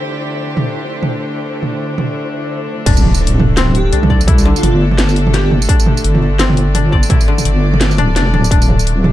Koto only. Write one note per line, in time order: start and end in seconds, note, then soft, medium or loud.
2.86 3.92 D4 medium
3.57 6.17 C4 loud
3.93 5.69 D4 medium
4.10 5.70 D5 medium
4.28 6.54 E4 medium
4.45 7.27 D3 loud
5.34 7.38 G4 loud
5.69 6.75 D4 medium
6.40 9.00 C4 loud
6.75 7.98 D4 medium
6.93 8.53 D5 medium
7.10 9.12 E4 medium
7.28 9.12 D3 loud
7.98 8.16 D4 loud
8.16 8.33 D4 loud
8.34 8.51 D4 medium
8.51 9.12 D4 medium